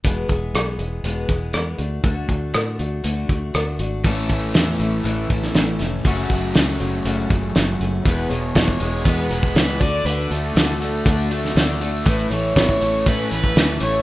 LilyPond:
<<
  \new Staff \with { instrumentName = "Fiddle" } { \time 4/4 \key e \mixolydian \tempo 4 = 120 r1 | r1 | r1 | r1 |
b'8 cis''4. b'8 b'4 d''8 | b'8 a'2 r4. | b'8 cis''4. b'8 b'4 cis''8 | }
  \new Staff \with { instrumentName = "Steel-string acoustic guitar" } { \time 4/4 \key e \mixolydian <e, b, e gis b gis'>8 <e gis b gis'>8 <e gis b gis'>8 <e gis b gis'>8 <e, b, e gis b gis'>8 <e gis b gis'>8 <e gis b gis'>8 <a d' fis'>8 | <d a d' fis'>8 <a d' fis'>8 <d a d' fis'>8 <a d' fis'>8 <d a d' fis'>8 <a d' fis'>8 <d a d' fis'>8 <a d' fis'>8 | <a, e a cis' e'>8 <a cis' e'>8 <e a cis' e'>8 <a cis' e'>8 <a, e a cis' e'>8 <a cis' e'>8 <e a cis' e'>8 <a cis' e'>8 | <fis, cis fis a cis' fis'>8 <fis a cis' fis'>8 <fis a cis' fis'>8 <fis a cis' fis'>8 <fis, cis fis a cis' fis'>8 <fis a cis' fis'>8 <fis a cis' fis'>8 <fis a cis' fis'>8 |
<e, b, e gis b gis'>8 <e gis b gis'>8 <e gis b gis'>8 <e gis b gis'>8 <e, b, e gis b gis'>8 <e gis b gis'>8 <e gis b gis'>8 <a d' fis'>8 | <d a d' fis'>8 <a d' fis'>8 <d a d' fis'>8 <a d' fis'>8 <d a d' fis'>8 <a d' fis'>8 <d a d' fis'>8 <a d' fis'>8 | <a, e a cis' e'>8 <a cis' e'>8 <e a cis' e'>8 <a cis' e'>8 <a, e a cis' e'>8 <a cis' e'>8 <e a cis' e'>8 <a cis' e'>8 | }
  \new Staff \with { instrumentName = "Overdriven electric guitar" } { \clef bass \time 4/4 \key e \mixolydian r1 | r1 | <a, e a cis' a'>1 | <fis, cis fis a cis' fis'>1 |
e,8 b,8 e8 gis8 b8 gis8 e8 d8 | d8 a8 d8 a8 d'8 a8 d8 a8 | a,8 e8 e8 a8 cis'8 a8 e8 a8 | }
  \new Staff \with { instrumentName = "Fingered electric bass" } { \clef bass \time 4/4 \key e \mixolydian e,,8 e,,8 b,,8 e,,8 e,,8 e,,8 e,8 d,8 | d,8 d,8 a,8 d,8 d,8 d,8 d,8 gis,,8 | a,,8 a,,8 e,8 a,,8 a,,8 a,,8 a,,8 f,,8 | fis,,8 fis,,8 cis,8 fis,,8 fis,,8 fis,,8 fis,,8 fis,,8 |
e,,8 e,,8 e,,8 e,,8 e,8 e,,8 cis,8 d,8 | d,8 d,8 d,4 d,4 d,4 | a,,8 a,,8 a,,8 a,,8 a,8 a,,8 d,8 a,,8 | }
  \new DrumStaff \with { instrumentName = "Drums" } \drummode { \time 4/4 <hh bd>8 <hh bd>8 <hh ss>8 hh8 hh8 <hh bd>8 <hh ss>8 hh8 | <hh bd>8 <hh bd>8 <hh ss>8 hh8 hh8 <hh bd>8 <hh ss>8 hh8 | <hh bd>8 <hh bd>8 <hh sn>8 hh8 hh8 <hh bd>16 sn16 <hh sn>8 <hh sn>8 | <hh bd>8 <hh bd>8 <hh sn>8 hh8 hh8 <hh bd>8 <hh sn>8 hh8 |
<hh bd>8 hh8 <hh bd sn>16 bd16 hh8 <hh bd>8 hh16 bd16 <hh sn>8 <hh bd>8 | hh8 hh8 <hh sn>8 hh8 <hh bd>8 hh16 sn16 <hh sn>8 hh8 | <hh bd>8 hh8 <hh bd sn>16 bd16 hh8 <hh bd>8 hh16 bd16 <hh sn>8 hh8 | }
>>